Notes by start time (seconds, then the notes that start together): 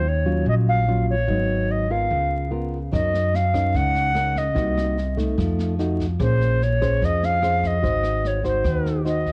Already playing: D#2 D#3
0.08 C#5
0.25 F#3 C#4 F4
0.45 A#1 A#2 D#5
0.69 F5
0.88 F#3 C#4 F4
1.10 C#5
1.27 G#1 G#2 F#3 B3 D#4
1.71 D#5
1.90 B3 F4 A#4 F5
2.11 C#2 C#3
2.51 B3 F4 A#4
2.92 F#2 F#3 C#4 D#4 A#4 D#5, kick, cross-stick, snare
3.14 snare
3.34 F5, snare
3.54 C#4 D#4 A#4, kick, cross-stick, snare
3.74 C#2 C#3 F#5, kick, snare
3.95 snare
4.14 C#4 D#4 A#4, cross-stick, snare
4.36 D#5, kick, snare
4.55 C2 C3 A#3 D#4 F#4, kick, snare
4.77 cross-stick, snare
4.97 snare
5.17 A3 D#4, kick, snare
5.38 F2 F3, kick, cross-stick, snare
5.59 snare
5.79 A3 D#4 F#4, snare
6.00 kick, snare
6.20 A#1 A#3 C#4 G#4 C5, kick, cross-stick, snare
6.41 snare
6.62 C#5, snare
6.81 C#4 G#4 C5, kick, cross-stick, snare
7.02 F2 F3 D#5, kick, snare
7.22 F5, snare
7.42 C#4 G#4 C5, cross-stick, snare
7.63 D#5, kick, snare
7.82 G#1 G#3 D#4 F#4 C5, kick, snare
8.03 cross-stick, snare
8.25 C#5, snare
8.44 D#4 F#4 C5, kick, snare
8.48 C5
8.64 D#2 D#3, kick, cross-stick, snare
8.86 snare
9.05 D#4 F#4 C5 D#5, snare
9.26 kick, snare